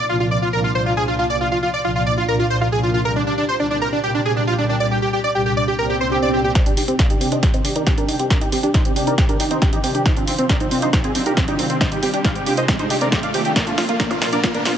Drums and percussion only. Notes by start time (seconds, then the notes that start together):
6.55 kick, snare, closed hi-hat
6.66 closed hi-hat
6.77 open hi-hat
6.88 closed hi-hat
6.99 kick, snare, closed hi-hat
7.10 closed hi-hat
7.21 open hi-hat
7.32 closed hi-hat
7.43 kick, snare, closed hi-hat
7.54 closed hi-hat
7.65 open hi-hat
7.76 closed hi-hat
7.87 kick, snare, closed hi-hat
7.98 closed hi-hat
8.09 open hi-hat
8.19 closed hi-hat
8.30 kick, snare, closed hi-hat
8.41 closed hi-hat
8.52 open hi-hat
8.63 closed hi-hat
8.74 kick, snare, closed hi-hat
8.85 closed hi-hat
8.96 open hi-hat
9.07 closed hi-hat
9.18 kick, snare, closed hi-hat
9.29 closed hi-hat
9.40 open hi-hat
9.51 closed hi-hat
9.62 kick, snare, closed hi-hat
9.73 closed hi-hat
9.84 open hi-hat
9.95 closed hi-hat
10.06 kick, snare, closed hi-hat
10.17 closed hi-hat
10.27 open hi-hat
10.38 closed hi-hat
10.49 kick, snare, closed hi-hat
10.60 closed hi-hat
10.71 open hi-hat
10.82 closed hi-hat
10.93 kick, snare, closed hi-hat
11.04 closed hi-hat
11.15 open hi-hat
11.26 closed hi-hat
11.37 kick, snare, closed hi-hat
11.48 closed hi-hat
11.59 open hi-hat
11.70 closed hi-hat
11.81 kick, snare, closed hi-hat
11.92 closed hi-hat
12.03 open hi-hat
12.14 closed hi-hat
12.24 kick, snare, closed hi-hat
12.35 closed hi-hat
12.46 open hi-hat
12.57 closed hi-hat
12.68 kick, snare, closed hi-hat
12.79 closed hi-hat
12.90 open hi-hat
13.01 closed hi-hat
13.12 kick, snare, closed hi-hat
13.23 closed hi-hat
13.34 open hi-hat
13.45 closed hi-hat
13.56 kick, snare, closed hi-hat
13.67 closed hi-hat
13.78 snare, open hi-hat, percussion blips
13.89 closed hi-hat
14.00 kick, snare, closed hi-hat
14.11 closed hi-hat, percussion blips
14.22 snare, open hi-hat
14.33 closed hi-hat
14.44 kick, snare, closed hi-hat
14.55 closed hi-hat
14.65 snare, open hi-hat